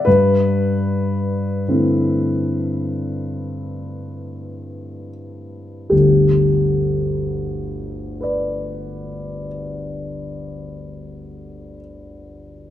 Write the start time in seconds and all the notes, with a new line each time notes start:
0.05 G2 B4
1.68 D3 A3 C4 E4
5.90 G1 D2 G4
8.21 B4 D5